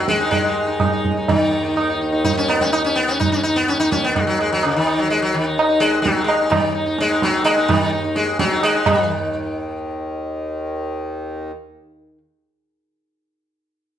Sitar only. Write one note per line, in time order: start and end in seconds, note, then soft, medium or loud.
0.08 0.30 G#3 loud
0.20 0.42 D#4 soft
0.31 1.31 G#3 loud
0.44 0.65 D#4 soft
0.67 0.79 D#4 soft
0.80 0.91 D#4 soft
0.92 1.15 D#4 soft
1.17 1.39 D#4 soft
1.29 1.97 D#3 medium
1.41 1.50 D#4 soft
1.51 1.63 D#4 soft
1.64 1.75 D#4 soft
1.76 1.88 D#4 soft
1.90 2.00 D#4 soft
2.01 2.11 D#4 soft
2.12 2.23 D#4 soft
2.24 2.32 D#4 loud
2.33 2.36 D#4 medium
2.37 2.49 C#4 loud
2.48 2.61 B3 loud
2.61 2.72 C#4 medium
2.72 2.84 D#4 loud
2.85 2.97 C#4 loud
2.96 3.08 B3 loud
3.08 3.19 C#4 medium
3.20 3.32 D#4 loud
3.32 3.43 C#4 loud
3.43 3.56 D#4 loud
3.56 3.68 B3 loud
3.68 3.79 C#4 loud
3.80 3.91 D#4 loud
3.91 4.04 C#4 loud
4.04 4.16 B3 loud
4.16 4.27 G#3 medium
4.27 4.40 F#3 medium
4.40 4.52 G#3 medium
4.52 4.63 F#3 medium
4.65 4.76 C#3 medium
4.76 5.00 D#3 medium
4.87 5.09 D#4 soft
4.99 5.10 F#3 medium
5.10 5.22 G#3 loud
5.22 5.35 F#3 medium
5.34 5.45 D#3 medium
5.45 5.57 D#4 soft
5.58 5.67 D#4 soft
5.69 5.91 D#4 soft
5.80 6.02 G#3 loud
6.02 6.24 F#3 medium
6.17 6.39 D#4 soft
6.24 6.51 G#3 medium
6.41 6.63 D#4 soft
6.50 6.73 D#3 medium
6.75 6.85 D#4 soft
6.86 7.07 D#4 soft
7.00 7.23 G#3 loud
7.09 7.32 D#4 soft
7.23 7.44 F#3 loud
7.33 7.55 D#4 soft
7.44 7.69 G#3 loud
7.56 7.79 D#4 soft
7.68 7.91 D#3 medium
7.82 7.91 D#4 soft
7.92 8.03 D#4 soft
8.04 8.26 D#4 soft
8.16 8.39 G#3 loud
8.39 8.63 F#3 loud
8.51 8.73 D#4 soft
8.63 8.87 G#3 loud
8.74 8.96 D#4 soft
8.87 12.18 D#3 medium